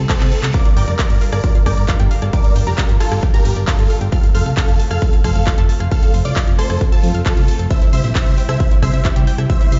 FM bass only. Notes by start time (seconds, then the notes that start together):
0.21 C2
0.43 C2
0.77 G1
0.88 F1
1.10 G1
1.33 G1
1.66 G1
1.77 G1
2.00 G1
2.22 G1
2.56 G1
2.67 F1
2.89 G1
3.12 G1
3.45 G1
3.56 G1
3.79 G1
4.01 G1
4.35 F1
4.46 C2
4.68 F1
4.91 F1
5.24 F1
5.36 F1
5.58 F1
5.80 F1
6.14 F1
6.25 C2
6.47 F1
6.70 F1
7.03 F2
7.15 F1
7.37 C2
7.59 F1
7.93 C2
8.04 A#1
8.27 C2
8.49 C2
8.83 C2
8.94 C2
9.16 C2
9.38 C2
9.72 C2